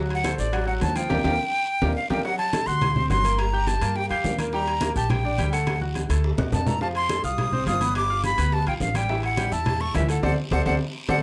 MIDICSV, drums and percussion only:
0, 0, Header, 1, 2, 480
1, 0, Start_track
1, 0, Tempo, 285307
1, 1857, Time_signature, 4, 2, 24, 8
1, 18890, End_track
2, 0, Start_track
2, 0, Title_t, "Drums"
2, 170, Note_on_c, 9, 63, 33
2, 173, Note_on_c, 9, 60, 31
2, 176, Note_on_c, 9, 65, 63
2, 338, Note_off_c, 9, 63, 0
2, 342, Note_off_c, 9, 60, 0
2, 344, Note_off_c, 9, 65, 0
2, 408, Note_on_c, 9, 63, 94
2, 409, Note_on_c, 9, 73, 75
2, 411, Note_on_c, 9, 60, 56
2, 416, Note_on_c, 9, 65, 90
2, 577, Note_off_c, 9, 63, 0
2, 577, Note_off_c, 9, 73, 0
2, 579, Note_off_c, 9, 60, 0
2, 585, Note_off_c, 9, 65, 0
2, 646, Note_on_c, 9, 63, 33
2, 646, Note_on_c, 9, 73, 71
2, 654, Note_on_c, 9, 60, 36
2, 814, Note_off_c, 9, 73, 0
2, 815, Note_off_c, 9, 63, 0
2, 823, Note_off_c, 9, 60, 0
2, 889, Note_on_c, 9, 74, 67
2, 892, Note_on_c, 9, 60, 67
2, 894, Note_on_c, 9, 63, 36
2, 894, Note_on_c, 9, 65, 85
2, 1057, Note_off_c, 9, 74, 0
2, 1060, Note_off_c, 9, 60, 0
2, 1062, Note_off_c, 9, 63, 0
2, 1063, Note_off_c, 9, 65, 0
2, 1136, Note_on_c, 9, 60, 33
2, 1137, Note_on_c, 9, 63, 34
2, 1304, Note_off_c, 9, 60, 0
2, 1305, Note_off_c, 9, 63, 0
2, 1368, Note_on_c, 9, 65, 72
2, 1368, Note_on_c, 9, 66, 75
2, 1372, Note_on_c, 9, 73, 66
2, 1375, Note_on_c, 9, 60, 34
2, 1375, Note_on_c, 9, 61, 83
2, 1379, Note_on_c, 9, 63, 75
2, 1536, Note_off_c, 9, 65, 0
2, 1536, Note_off_c, 9, 66, 0
2, 1540, Note_off_c, 9, 73, 0
2, 1543, Note_off_c, 9, 60, 0
2, 1543, Note_off_c, 9, 61, 0
2, 1547, Note_off_c, 9, 63, 0
2, 1608, Note_on_c, 9, 73, 74
2, 1610, Note_on_c, 9, 65, 68
2, 1777, Note_off_c, 9, 73, 0
2, 1778, Note_off_c, 9, 65, 0
2, 1852, Note_on_c, 9, 65, 92
2, 1852, Note_on_c, 9, 74, 103
2, 1856, Note_on_c, 9, 61, 100
2, 1861, Note_on_c, 9, 63, 92
2, 2020, Note_off_c, 9, 65, 0
2, 2020, Note_off_c, 9, 74, 0
2, 2024, Note_off_c, 9, 61, 0
2, 2029, Note_off_c, 9, 63, 0
2, 2089, Note_on_c, 9, 65, 100
2, 2096, Note_on_c, 9, 74, 93
2, 2097, Note_on_c, 9, 61, 95
2, 2103, Note_on_c, 9, 63, 95
2, 2257, Note_off_c, 9, 65, 0
2, 2265, Note_off_c, 9, 74, 0
2, 2266, Note_off_c, 9, 61, 0
2, 2271, Note_off_c, 9, 63, 0
2, 3055, Note_on_c, 9, 65, 96
2, 3057, Note_on_c, 9, 74, 99
2, 3058, Note_on_c, 9, 61, 91
2, 3060, Note_on_c, 9, 63, 99
2, 3224, Note_off_c, 9, 65, 0
2, 3225, Note_off_c, 9, 74, 0
2, 3226, Note_off_c, 9, 61, 0
2, 3228, Note_off_c, 9, 63, 0
2, 3538, Note_on_c, 9, 61, 99
2, 3539, Note_on_c, 9, 63, 97
2, 3540, Note_on_c, 9, 65, 96
2, 3542, Note_on_c, 9, 74, 95
2, 3706, Note_off_c, 9, 61, 0
2, 3707, Note_off_c, 9, 63, 0
2, 3708, Note_off_c, 9, 65, 0
2, 3711, Note_off_c, 9, 74, 0
2, 3774, Note_on_c, 9, 63, 32
2, 3782, Note_on_c, 9, 74, 72
2, 3783, Note_on_c, 9, 60, 70
2, 3942, Note_off_c, 9, 63, 0
2, 3950, Note_off_c, 9, 74, 0
2, 3951, Note_off_c, 9, 60, 0
2, 4021, Note_on_c, 9, 60, 31
2, 4021, Note_on_c, 9, 63, 34
2, 4022, Note_on_c, 9, 65, 64
2, 4190, Note_off_c, 9, 60, 0
2, 4190, Note_off_c, 9, 63, 0
2, 4190, Note_off_c, 9, 65, 0
2, 4258, Note_on_c, 9, 73, 73
2, 4259, Note_on_c, 9, 63, 93
2, 4261, Note_on_c, 9, 65, 85
2, 4263, Note_on_c, 9, 60, 57
2, 4427, Note_off_c, 9, 73, 0
2, 4428, Note_off_c, 9, 63, 0
2, 4430, Note_off_c, 9, 65, 0
2, 4431, Note_off_c, 9, 60, 0
2, 4497, Note_on_c, 9, 60, 36
2, 4498, Note_on_c, 9, 73, 68
2, 4503, Note_on_c, 9, 63, 33
2, 4665, Note_off_c, 9, 60, 0
2, 4666, Note_off_c, 9, 73, 0
2, 4671, Note_off_c, 9, 63, 0
2, 4736, Note_on_c, 9, 60, 71
2, 4736, Note_on_c, 9, 63, 36
2, 4736, Note_on_c, 9, 64, 85
2, 4740, Note_on_c, 9, 74, 67
2, 4744, Note_on_c, 9, 65, 83
2, 4905, Note_off_c, 9, 60, 0
2, 4905, Note_off_c, 9, 63, 0
2, 4905, Note_off_c, 9, 64, 0
2, 4908, Note_off_c, 9, 74, 0
2, 4912, Note_off_c, 9, 65, 0
2, 4977, Note_on_c, 9, 63, 33
2, 4977, Note_on_c, 9, 64, 71
2, 4979, Note_on_c, 9, 60, 32
2, 5145, Note_off_c, 9, 63, 0
2, 5145, Note_off_c, 9, 64, 0
2, 5148, Note_off_c, 9, 60, 0
2, 5213, Note_on_c, 9, 63, 73
2, 5219, Note_on_c, 9, 60, 34
2, 5219, Note_on_c, 9, 61, 81
2, 5221, Note_on_c, 9, 73, 63
2, 5226, Note_on_c, 9, 65, 67
2, 5381, Note_off_c, 9, 63, 0
2, 5387, Note_off_c, 9, 60, 0
2, 5387, Note_off_c, 9, 61, 0
2, 5390, Note_off_c, 9, 73, 0
2, 5395, Note_off_c, 9, 65, 0
2, 5449, Note_on_c, 9, 63, 73
2, 5463, Note_on_c, 9, 73, 71
2, 5467, Note_on_c, 9, 65, 69
2, 5617, Note_off_c, 9, 63, 0
2, 5631, Note_off_c, 9, 73, 0
2, 5636, Note_off_c, 9, 65, 0
2, 5691, Note_on_c, 9, 63, 33
2, 5696, Note_on_c, 9, 60, 67
2, 5699, Note_on_c, 9, 65, 92
2, 5699, Note_on_c, 9, 74, 71
2, 5860, Note_off_c, 9, 63, 0
2, 5864, Note_off_c, 9, 60, 0
2, 5868, Note_off_c, 9, 65, 0
2, 5868, Note_off_c, 9, 74, 0
2, 5928, Note_on_c, 9, 63, 34
2, 5942, Note_on_c, 9, 60, 33
2, 6096, Note_off_c, 9, 63, 0
2, 6110, Note_off_c, 9, 60, 0
2, 6175, Note_on_c, 9, 63, 61
2, 6178, Note_on_c, 9, 60, 58
2, 6182, Note_on_c, 9, 65, 65
2, 6182, Note_on_c, 9, 73, 71
2, 6344, Note_off_c, 9, 63, 0
2, 6347, Note_off_c, 9, 60, 0
2, 6350, Note_off_c, 9, 65, 0
2, 6350, Note_off_c, 9, 73, 0
2, 6413, Note_on_c, 9, 63, 33
2, 6415, Note_on_c, 9, 60, 36
2, 6418, Note_on_c, 9, 65, 90
2, 6418, Note_on_c, 9, 73, 71
2, 6581, Note_off_c, 9, 63, 0
2, 6583, Note_off_c, 9, 60, 0
2, 6586, Note_off_c, 9, 65, 0
2, 6586, Note_off_c, 9, 73, 0
2, 6656, Note_on_c, 9, 60, 68
2, 6659, Note_on_c, 9, 63, 34
2, 6665, Note_on_c, 9, 74, 65
2, 6824, Note_off_c, 9, 60, 0
2, 6828, Note_off_c, 9, 63, 0
2, 6834, Note_off_c, 9, 74, 0
2, 6895, Note_on_c, 9, 60, 33
2, 6895, Note_on_c, 9, 63, 35
2, 6907, Note_on_c, 9, 65, 66
2, 7063, Note_off_c, 9, 60, 0
2, 7064, Note_off_c, 9, 63, 0
2, 7075, Note_off_c, 9, 65, 0
2, 7139, Note_on_c, 9, 60, 33
2, 7139, Note_on_c, 9, 61, 80
2, 7139, Note_on_c, 9, 63, 77
2, 7142, Note_on_c, 9, 73, 63
2, 7146, Note_on_c, 9, 66, 76
2, 7307, Note_off_c, 9, 60, 0
2, 7307, Note_off_c, 9, 61, 0
2, 7307, Note_off_c, 9, 63, 0
2, 7310, Note_off_c, 9, 73, 0
2, 7314, Note_off_c, 9, 66, 0
2, 7378, Note_on_c, 9, 63, 72
2, 7378, Note_on_c, 9, 73, 68
2, 7379, Note_on_c, 9, 65, 90
2, 7546, Note_off_c, 9, 63, 0
2, 7546, Note_off_c, 9, 73, 0
2, 7547, Note_off_c, 9, 65, 0
2, 7611, Note_on_c, 9, 63, 33
2, 7619, Note_on_c, 9, 60, 68
2, 7622, Note_on_c, 9, 74, 68
2, 7779, Note_off_c, 9, 63, 0
2, 7787, Note_off_c, 9, 60, 0
2, 7791, Note_off_c, 9, 74, 0
2, 7855, Note_on_c, 9, 63, 34
2, 7865, Note_on_c, 9, 60, 32
2, 7865, Note_on_c, 9, 65, 65
2, 8024, Note_off_c, 9, 63, 0
2, 8033, Note_off_c, 9, 65, 0
2, 8034, Note_off_c, 9, 60, 0
2, 8088, Note_on_c, 9, 63, 97
2, 8098, Note_on_c, 9, 73, 75
2, 8099, Note_on_c, 9, 65, 93
2, 8104, Note_on_c, 9, 60, 55
2, 8257, Note_off_c, 9, 63, 0
2, 8266, Note_off_c, 9, 73, 0
2, 8267, Note_off_c, 9, 65, 0
2, 8273, Note_off_c, 9, 60, 0
2, 8338, Note_on_c, 9, 63, 34
2, 8341, Note_on_c, 9, 73, 67
2, 8349, Note_on_c, 9, 60, 35
2, 8506, Note_off_c, 9, 63, 0
2, 8510, Note_off_c, 9, 73, 0
2, 8517, Note_off_c, 9, 60, 0
2, 8577, Note_on_c, 9, 74, 67
2, 8578, Note_on_c, 9, 63, 35
2, 8578, Note_on_c, 9, 64, 88
2, 8583, Note_on_c, 9, 60, 70
2, 8587, Note_on_c, 9, 65, 85
2, 8745, Note_off_c, 9, 74, 0
2, 8746, Note_off_c, 9, 63, 0
2, 8746, Note_off_c, 9, 64, 0
2, 8751, Note_off_c, 9, 60, 0
2, 8755, Note_off_c, 9, 65, 0
2, 8812, Note_on_c, 9, 63, 35
2, 8821, Note_on_c, 9, 60, 32
2, 8980, Note_off_c, 9, 63, 0
2, 8989, Note_off_c, 9, 60, 0
2, 9054, Note_on_c, 9, 63, 78
2, 9056, Note_on_c, 9, 73, 67
2, 9058, Note_on_c, 9, 60, 35
2, 9058, Note_on_c, 9, 61, 81
2, 9066, Note_on_c, 9, 65, 71
2, 9222, Note_off_c, 9, 63, 0
2, 9224, Note_off_c, 9, 73, 0
2, 9226, Note_off_c, 9, 60, 0
2, 9226, Note_off_c, 9, 61, 0
2, 9234, Note_off_c, 9, 65, 0
2, 9301, Note_on_c, 9, 65, 71
2, 9305, Note_on_c, 9, 73, 70
2, 9469, Note_off_c, 9, 65, 0
2, 9473, Note_off_c, 9, 73, 0
2, 9537, Note_on_c, 9, 65, 94
2, 9541, Note_on_c, 9, 60, 70
2, 9542, Note_on_c, 9, 63, 72
2, 9542, Note_on_c, 9, 74, 71
2, 9705, Note_off_c, 9, 65, 0
2, 9709, Note_off_c, 9, 60, 0
2, 9710, Note_off_c, 9, 63, 0
2, 9710, Note_off_c, 9, 74, 0
2, 9780, Note_on_c, 9, 63, 69
2, 9786, Note_on_c, 9, 60, 31
2, 9948, Note_off_c, 9, 63, 0
2, 9954, Note_off_c, 9, 60, 0
2, 10014, Note_on_c, 9, 65, 69
2, 10020, Note_on_c, 9, 63, 78
2, 10020, Note_on_c, 9, 73, 69
2, 10026, Note_on_c, 9, 60, 60
2, 10183, Note_off_c, 9, 65, 0
2, 10188, Note_off_c, 9, 73, 0
2, 10189, Note_off_c, 9, 63, 0
2, 10194, Note_off_c, 9, 60, 0
2, 10259, Note_on_c, 9, 60, 34
2, 10259, Note_on_c, 9, 73, 72
2, 10262, Note_on_c, 9, 65, 90
2, 10428, Note_off_c, 9, 60, 0
2, 10428, Note_off_c, 9, 73, 0
2, 10430, Note_off_c, 9, 65, 0
2, 10500, Note_on_c, 9, 74, 67
2, 10503, Note_on_c, 9, 60, 72
2, 10668, Note_off_c, 9, 74, 0
2, 10671, Note_off_c, 9, 60, 0
2, 10736, Note_on_c, 9, 64, 93
2, 10738, Note_on_c, 9, 65, 99
2, 10742, Note_on_c, 9, 60, 33
2, 10904, Note_off_c, 9, 64, 0
2, 10906, Note_off_c, 9, 65, 0
2, 10910, Note_off_c, 9, 60, 0
2, 10974, Note_on_c, 9, 64, 76
2, 10978, Note_on_c, 9, 60, 35
2, 10978, Note_on_c, 9, 61, 82
2, 10979, Note_on_c, 9, 65, 92
2, 10979, Note_on_c, 9, 73, 67
2, 11142, Note_off_c, 9, 64, 0
2, 11147, Note_off_c, 9, 60, 0
2, 11147, Note_off_c, 9, 61, 0
2, 11147, Note_off_c, 9, 65, 0
2, 11147, Note_off_c, 9, 73, 0
2, 11212, Note_on_c, 9, 64, 84
2, 11213, Note_on_c, 9, 66, 77
2, 11219, Note_on_c, 9, 73, 72
2, 11381, Note_off_c, 9, 64, 0
2, 11382, Note_off_c, 9, 66, 0
2, 11387, Note_off_c, 9, 73, 0
2, 11454, Note_on_c, 9, 63, 32
2, 11457, Note_on_c, 9, 74, 71
2, 11458, Note_on_c, 9, 60, 69
2, 11622, Note_off_c, 9, 63, 0
2, 11625, Note_off_c, 9, 74, 0
2, 11626, Note_off_c, 9, 60, 0
2, 11695, Note_on_c, 9, 65, 65
2, 11698, Note_on_c, 9, 63, 35
2, 11706, Note_on_c, 9, 60, 32
2, 11863, Note_off_c, 9, 65, 0
2, 11866, Note_off_c, 9, 63, 0
2, 11875, Note_off_c, 9, 60, 0
2, 11935, Note_on_c, 9, 63, 95
2, 11938, Note_on_c, 9, 65, 91
2, 11942, Note_on_c, 9, 73, 70
2, 11946, Note_on_c, 9, 60, 61
2, 12104, Note_off_c, 9, 63, 0
2, 12106, Note_off_c, 9, 65, 0
2, 12110, Note_off_c, 9, 73, 0
2, 12114, Note_off_c, 9, 60, 0
2, 12177, Note_on_c, 9, 73, 74
2, 12181, Note_on_c, 9, 63, 31
2, 12183, Note_on_c, 9, 60, 34
2, 12346, Note_off_c, 9, 73, 0
2, 12349, Note_off_c, 9, 63, 0
2, 12352, Note_off_c, 9, 60, 0
2, 12419, Note_on_c, 9, 65, 85
2, 12420, Note_on_c, 9, 60, 71
2, 12420, Note_on_c, 9, 74, 69
2, 12424, Note_on_c, 9, 63, 35
2, 12424, Note_on_c, 9, 64, 86
2, 12587, Note_off_c, 9, 65, 0
2, 12588, Note_off_c, 9, 74, 0
2, 12589, Note_off_c, 9, 60, 0
2, 12592, Note_off_c, 9, 63, 0
2, 12592, Note_off_c, 9, 64, 0
2, 12659, Note_on_c, 9, 63, 34
2, 12659, Note_on_c, 9, 64, 72
2, 12664, Note_on_c, 9, 60, 33
2, 12827, Note_off_c, 9, 63, 0
2, 12827, Note_off_c, 9, 64, 0
2, 12832, Note_off_c, 9, 60, 0
2, 12895, Note_on_c, 9, 63, 81
2, 12900, Note_on_c, 9, 65, 71
2, 12900, Note_on_c, 9, 66, 72
2, 12905, Note_on_c, 9, 60, 34
2, 12905, Note_on_c, 9, 61, 84
2, 12908, Note_on_c, 9, 73, 64
2, 13063, Note_off_c, 9, 63, 0
2, 13069, Note_off_c, 9, 65, 0
2, 13069, Note_off_c, 9, 66, 0
2, 13073, Note_off_c, 9, 60, 0
2, 13073, Note_off_c, 9, 61, 0
2, 13076, Note_off_c, 9, 73, 0
2, 13136, Note_on_c, 9, 63, 73
2, 13137, Note_on_c, 9, 65, 70
2, 13142, Note_on_c, 9, 73, 72
2, 13304, Note_off_c, 9, 63, 0
2, 13305, Note_off_c, 9, 65, 0
2, 13310, Note_off_c, 9, 73, 0
2, 13375, Note_on_c, 9, 63, 33
2, 13379, Note_on_c, 9, 65, 94
2, 13380, Note_on_c, 9, 74, 72
2, 13391, Note_on_c, 9, 60, 67
2, 13543, Note_off_c, 9, 63, 0
2, 13548, Note_off_c, 9, 65, 0
2, 13549, Note_off_c, 9, 74, 0
2, 13560, Note_off_c, 9, 60, 0
2, 13619, Note_on_c, 9, 63, 33
2, 13627, Note_on_c, 9, 60, 32
2, 13788, Note_off_c, 9, 63, 0
2, 13795, Note_off_c, 9, 60, 0
2, 13856, Note_on_c, 9, 63, 63
2, 13857, Note_on_c, 9, 65, 75
2, 13857, Note_on_c, 9, 73, 76
2, 13866, Note_on_c, 9, 60, 56
2, 14024, Note_off_c, 9, 63, 0
2, 14025, Note_off_c, 9, 65, 0
2, 14025, Note_off_c, 9, 73, 0
2, 14034, Note_off_c, 9, 60, 0
2, 14093, Note_on_c, 9, 63, 32
2, 14098, Note_on_c, 9, 65, 88
2, 14102, Note_on_c, 9, 60, 37
2, 14104, Note_on_c, 9, 73, 71
2, 14261, Note_off_c, 9, 63, 0
2, 14266, Note_off_c, 9, 65, 0
2, 14271, Note_off_c, 9, 60, 0
2, 14272, Note_off_c, 9, 73, 0
2, 14332, Note_on_c, 9, 63, 36
2, 14339, Note_on_c, 9, 74, 68
2, 14341, Note_on_c, 9, 60, 69
2, 14500, Note_off_c, 9, 63, 0
2, 14508, Note_off_c, 9, 74, 0
2, 14509, Note_off_c, 9, 60, 0
2, 14575, Note_on_c, 9, 63, 34
2, 14581, Note_on_c, 9, 65, 69
2, 14582, Note_on_c, 9, 60, 34
2, 14744, Note_off_c, 9, 63, 0
2, 14749, Note_off_c, 9, 65, 0
2, 14750, Note_off_c, 9, 60, 0
2, 14812, Note_on_c, 9, 63, 81
2, 14819, Note_on_c, 9, 73, 67
2, 14825, Note_on_c, 9, 60, 34
2, 14825, Note_on_c, 9, 61, 82
2, 14980, Note_off_c, 9, 63, 0
2, 14987, Note_off_c, 9, 73, 0
2, 14993, Note_off_c, 9, 60, 0
2, 14993, Note_off_c, 9, 61, 0
2, 15049, Note_on_c, 9, 63, 77
2, 15058, Note_on_c, 9, 65, 100
2, 15058, Note_on_c, 9, 73, 70
2, 15217, Note_off_c, 9, 63, 0
2, 15226, Note_off_c, 9, 65, 0
2, 15227, Note_off_c, 9, 73, 0
2, 15292, Note_on_c, 9, 63, 34
2, 15298, Note_on_c, 9, 74, 73
2, 15300, Note_on_c, 9, 60, 74
2, 15460, Note_off_c, 9, 63, 0
2, 15466, Note_off_c, 9, 74, 0
2, 15468, Note_off_c, 9, 60, 0
2, 15531, Note_on_c, 9, 65, 67
2, 15533, Note_on_c, 9, 63, 36
2, 15544, Note_on_c, 9, 60, 35
2, 15700, Note_off_c, 9, 65, 0
2, 15701, Note_off_c, 9, 63, 0
2, 15712, Note_off_c, 9, 60, 0
2, 15770, Note_on_c, 9, 65, 94
2, 15771, Note_on_c, 9, 63, 100
2, 15775, Note_on_c, 9, 73, 71
2, 15782, Note_on_c, 9, 60, 58
2, 15938, Note_off_c, 9, 65, 0
2, 15939, Note_off_c, 9, 63, 0
2, 15943, Note_off_c, 9, 73, 0
2, 15950, Note_off_c, 9, 60, 0
2, 16013, Note_on_c, 9, 73, 69
2, 16014, Note_on_c, 9, 63, 35
2, 16016, Note_on_c, 9, 60, 36
2, 16181, Note_off_c, 9, 73, 0
2, 16182, Note_off_c, 9, 63, 0
2, 16184, Note_off_c, 9, 60, 0
2, 16251, Note_on_c, 9, 63, 36
2, 16251, Note_on_c, 9, 64, 88
2, 16251, Note_on_c, 9, 65, 88
2, 16257, Note_on_c, 9, 60, 71
2, 16257, Note_on_c, 9, 74, 70
2, 16419, Note_off_c, 9, 63, 0
2, 16419, Note_off_c, 9, 64, 0
2, 16419, Note_off_c, 9, 65, 0
2, 16425, Note_off_c, 9, 60, 0
2, 16425, Note_off_c, 9, 74, 0
2, 16492, Note_on_c, 9, 63, 35
2, 16493, Note_on_c, 9, 60, 33
2, 16660, Note_off_c, 9, 63, 0
2, 16661, Note_off_c, 9, 60, 0
2, 16729, Note_on_c, 9, 63, 82
2, 16732, Note_on_c, 9, 65, 72
2, 16732, Note_on_c, 9, 66, 74
2, 16738, Note_on_c, 9, 60, 35
2, 16738, Note_on_c, 9, 61, 83
2, 16739, Note_on_c, 9, 73, 68
2, 16898, Note_off_c, 9, 63, 0
2, 16901, Note_off_c, 9, 65, 0
2, 16901, Note_off_c, 9, 66, 0
2, 16906, Note_off_c, 9, 60, 0
2, 16906, Note_off_c, 9, 61, 0
2, 16907, Note_off_c, 9, 73, 0
2, 16969, Note_on_c, 9, 65, 68
2, 16977, Note_on_c, 9, 73, 73
2, 17137, Note_off_c, 9, 65, 0
2, 17145, Note_off_c, 9, 73, 0
2, 17208, Note_on_c, 9, 65, 96
2, 17216, Note_on_c, 9, 60, 101
2, 17216, Note_on_c, 9, 63, 93
2, 17216, Note_on_c, 9, 74, 102
2, 17376, Note_off_c, 9, 65, 0
2, 17384, Note_off_c, 9, 60, 0
2, 17384, Note_off_c, 9, 63, 0
2, 17384, Note_off_c, 9, 74, 0
2, 17686, Note_on_c, 9, 63, 106
2, 17692, Note_on_c, 9, 65, 107
2, 17694, Note_on_c, 9, 60, 95
2, 17695, Note_on_c, 9, 74, 99
2, 17854, Note_off_c, 9, 63, 0
2, 17861, Note_off_c, 9, 65, 0
2, 17863, Note_off_c, 9, 60, 0
2, 17863, Note_off_c, 9, 74, 0
2, 17931, Note_on_c, 9, 65, 100
2, 17934, Note_on_c, 9, 63, 100
2, 17935, Note_on_c, 9, 60, 101
2, 17937, Note_on_c, 9, 74, 99
2, 18100, Note_off_c, 9, 65, 0
2, 18103, Note_off_c, 9, 60, 0
2, 18103, Note_off_c, 9, 63, 0
2, 18105, Note_off_c, 9, 74, 0
2, 18653, Note_on_c, 9, 63, 98
2, 18654, Note_on_c, 9, 74, 100
2, 18655, Note_on_c, 9, 65, 100
2, 18656, Note_on_c, 9, 60, 98
2, 18821, Note_off_c, 9, 63, 0
2, 18823, Note_off_c, 9, 65, 0
2, 18823, Note_off_c, 9, 74, 0
2, 18824, Note_off_c, 9, 60, 0
2, 18890, End_track
0, 0, End_of_file